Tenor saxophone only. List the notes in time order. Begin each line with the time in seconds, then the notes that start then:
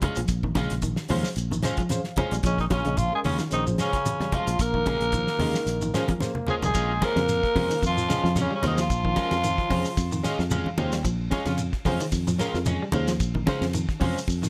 2.46 C#4
2.61 D#4
2.72 C#4
2.97 F4
3.15 G#4
3.25 C#4
3.53 D#4
3.81 C#4
4.35 F4
4.61 A#4
6.50 G#4
6.65 G#4
7.04 A#4
7.86 F4
8.41 C#4
8.55 C#4
8.67 D#4
8.81 F4